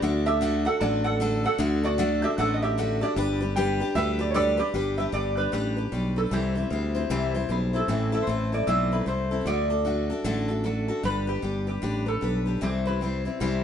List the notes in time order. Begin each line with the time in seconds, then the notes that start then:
0.02 D2 D3 A3 D4 F#4 A4
0.26 D4 F#4 G4 A4 E5
0.41 D3 A3 D4 F#4 A4
0.65 D4 F#4 A4 F#5
0.80 A1 A3 D4 F#4 A4 D5 A5
1.04 D4 F#4 A4 F#5
1.20 D3 A3 D4 F#4 A4
1.44 D4 F#4 A4 F#5
1.58 D2 D3 A3 D4 F#4 A4
1.83 D4 F#4 A4 D5
1.98 D3 A3 D4 F#4 A4
2.22 D4 F#4 G4 A4 E5
2.38 A1 A3 D4 F#4 A4 F#5
2.54 D#5
2.62 D4 F#4 G4 A4 E5
2.78 D3 A3 D4 F#4 A4
3.01 D4 F#4 G4 A4 D5
3.16 G1 G3 D4 G4 B4
3.41 D4 G4 B4
3.56 G3 D4 G4 B4 G5
3.80 D4 G4 B4
3.95 D2 G3 D4 G4 B4 E5
4.19 D4 G4 B4 D5
4.31 G3 A4 C#5
4.35 D4 G4 B4 D5
4.57 D4 G4 B4
4.74 G1 G3 D4 G4 B4
4.98 D4 G4 B4 E5
5.12 G1 G3 D4 G4 B4 D5
5.37 D4 G4 B4
5.52 A1 G3 D4 G4 B4
5.77 D4 G4 B4
5.92 B1 G3 D4 G4 B4
6.16 D4 G4 A4 B4
6.31 C2 C3 E3 G3 C4 E4 G4 C5
6.55 G3 C4 E4 C5
6.70 D2 G3 C4 E4 C5
6.95 G3 C4 E4 C5
7.10 C2 C3 E3 G3 C4 E4 C5
7.34 G3 C4 E4 C5
7.49 B1 G3 C4 E4 B4 C5
7.73 G3 C4 E4 A4 C5
7.88 A1 A2 E3 A3 C4 E4 A4
8.12 A3 C4 E4 A4 E5
8.23 C5
8.27 A1 A3 C4 E4 A4
8.52 A3 C4 E4 A4 D5
8.67 B1 A2 E3 A3 C4 E4 A4 E5
8.92 A3 C4 E4 A4 B4
9.01 B4
9.06 C2 A3 C4 E4 A4 C5
9.31 A3 C4 E4 A4
9.46 D2 D3 A3 D4 F#4 A4 D5
9.70 D4 F#4 A4
9.85 A3 D4 F#4 A4
10.10 D4 F#4 A4
10.24 A1 D3 A3 D4 F#4 A4
10.48 D4 F#4 A4
10.64 A3 D4 F#4 A4
10.88 D4 F#4 A4
11.03 G1 G3 D4 G4 B4
11.27 D4 G4 B4
11.42 G1 G3 D4 G4 B4
11.67 D4 G4 B4
11.82 A1 G3 D4 G4 B4
12.06 D4 G4 A4 B4
12.21 B1 G3 D4 G4 B4
12.46 D4 G4 B4
12.61 C2 C3 E3 G3 C4 E4 G4 C5
12.86 G3 C4 E4 B4 C5
13.01 G3 C4 E4 C5
13.25 G3 C4 E4 C5
13.40 C2 C3 E3 G3 C4 E4 C5